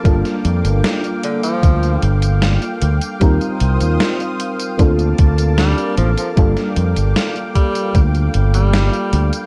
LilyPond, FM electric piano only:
\new Staff \with { instrumentName = "FM electric piano" } { \time 4/4 \key g \minor \tempo 4 = 76 <g bes d' f' a'>1 | <g c' ees' f' bes'>2 <bes c' d' f' a'>2 | <g bes d' f' a'>1 | }